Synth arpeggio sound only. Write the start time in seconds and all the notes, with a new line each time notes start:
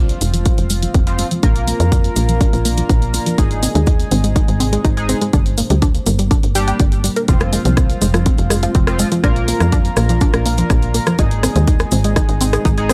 0.21 G#3
0.34 F3
0.46 C4
0.70 G#3
0.83 F3
0.94 C4
1.19 G#3
1.31 F3
1.43 D4
1.68 A#3
1.80 F3
1.92 D4
2.17 A#3
2.29 F3
2.41 D4
2.65 A#3
2.78 F3
2.90 D4
3.14 A#3
3.26 F3
3.38 D#4
3.63 C4
3.75 G#3
3.87 D#4
4.12 C4
4.24 G#3
4.36 D#4
4.60 C4
4.73 G#3
4.85 D#4
5.09 C4
5.22 G#3
5.33 D4
5.58 A#3
5.70 G3
5.82 D4
6.06 A#3
6.19 G3
6.31 D4
6.55 G4
6.68 G5
6.80 D5
7.04 G3
7.16 A#4
7.28 C4
7.53 G#3
7.65 F3
7.77 C4
8.02 G#3
8.14 F3
8.26 C4
8.51 G#3
8.63 F4
8.75 C4
8.99 G#3
9.12 F3
9.24 D4
9.48 A#3
9.61 F3
9.73 D4
9.97 A#3
10.09 F3
10.21 D4
10.46 A#3
10.58 F3
10.70 D4
10.95 A#3
11.07 F3
11.19 D#4
11.43 C4
11.56 G#3
11.68 D#4
11.92 C4
12.05 G#3
12.16 D#4
12.41 C4
12.53 G#4
12.65 D#4
12.90 C4